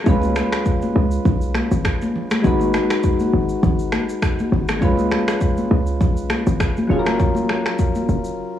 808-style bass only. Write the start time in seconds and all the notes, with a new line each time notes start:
0.07 C#2
0.96 C#2
1.25 B1
1.72 G#1
2.44 G#1
3.33 G#1
3.63 G#1
4.52 G#1
4.82 C#2
5.71 C#2
6.01 B1
6.47 G#1
6.90 F#1
8.09 F#1